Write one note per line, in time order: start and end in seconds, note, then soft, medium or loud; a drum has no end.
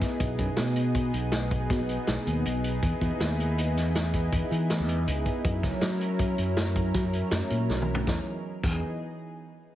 0.00 0.17 B3 medium
0.00 0.17 D#4 medium
0.00 0.16 E4 medium
0.00 0.18 G#4 medium
0.00 kick medium
0.00 snare soft
0.00 closed hi-hat medium
0.19 0.38 B1 medium
0.19 2.78 B2 medium
0.19 2.78 B3 medium
0.19 2.79 D#4 medium
0.19 2.79 G#4 medium
0.19 kick loud
0.19 closed hi-hat medium
0.38 0.48 F#2 loud
0.38 kick medium
0.38 closed hi-hat medium
0.57 1.11 B2 medium
0.57 snare loud
0.57 closed hi-hat medium
0.76 closed hi-hat medium
0.95 kick medium
0.95 closed hi-hat medium
1.14 1.66 B1 medium
1.14 closed hi-hat medium
1.32 snare loud
1.32 closed hi-hat medium
1.51 kick medium
1.51 closed hi-hat medium
1.70 1.79 B2 medium
1.70 kick loud
1.70 snare soft
1.70 closed hi-hat medium
1.80 1.97 B1 medium
1.89 closed hi-hat medium
2.07 2.17 B1 medium
2.07 snare loud
2.07 closed hi-hat medium
2.27 2.44 D#2 medium
2.27 closed hi-hat medium
2.45 2.79 B1 medium
2.45 closed hi-hat medium
2.64 closed hi-hat medium
2.82 2.91 E2 medium
2.82 5.41 B3 medium
2.82 5.41 D#4 medium
2.82 5.40 E4 medium
2.82 5.41 G#4 medium
2.82 kick loud
2.82 closed hi-hat medium
3.01 3.10 E2 medium
3.01 kick medium
3.01 closed hi-hat soft
3.20 3.76 D#2 medium
3.20 snare loud
3.20 closed hi-hat medium
3.40 closed hi-hat medium
3.58 closed hi-hat medium
3.76 4.29 E2 medium
3.76 snare soft
3.76 closed hi-hat medium
3.95 snare loud
3.95 closed hi-hat medium
4.14 kick medium
4.14 closed hi-hat medium
4.33 4.41 E2 medium
4.33 kick loud
4.33 closed hi-hat medium
4.51 4.81 E3 medium
4.51 closed hi-hat medium
4.70 snare loud
4.70 closed hi-hat medium
4.80 5.05 E2 medium
4.89 closed hi-hat medium
5.08 5.25 C#2 medium
5.08 closed hi-hat medium
5.26 kick medium
5.26 closed hi-hat medium
5.44 5.62 F#2 loud
5.44 8.03 F#3 medium
5.44 8.03 C#4 medium
5.44 8.04 E4 medium
5.44 8.04 A#4 medium
5.44 kick loud
5.44 closed hi-hat medium
5.63 5.72 C#2 medium
5.63 kick medium
5.63 snare soft
5.63 closed hi-hat medium
5.81 6.35 F#3 medium
5.81 snare loud
5.81 closed hi-hat medium
6.01 closed hi-hat medium
6.19 kick loud
6.19 closed hi-hat medium
6.38 6.91 F#2 medium
6.38 closed hi-hat medium
6.57 snare loud
6.57 closed hi-hat medium
6.76 kick medium
6.76 closed hi-hat medium
6.94 7.03 F#3 medium
6.94 kick loud
6.94 snare soft
6.94 closed hi-hat medium
7.04 7.21 F#2 medium
7.13 closed hi-hat medium
7.31 7.41 F#2 loud
7.31 snare loud
7.31 closed hi-hat medium
7.50 7.68 A#2 medium
7.50 closed hi-hat medium
7.70 8.04 B1 medium
7.70 snare medium
7.82 mid tom medium
7.95 floor tom loud
8.07 8.18 E2 medium
8.07 8.18 E3 medium
8.07 8.18 B3 medium
8.07 8.18 D#4 medium
8.07 8.18 G#4 medium
8.07 kick loud
8.07 snare medium
8.63 8.81 E2 medium
8.63 8.81 E3 medium
8.63 8.81 B3 medium
8.63 8.81 D#4 medium
8.63 8.81 G#4 medium
8.63 kick loud
8.63 crash medium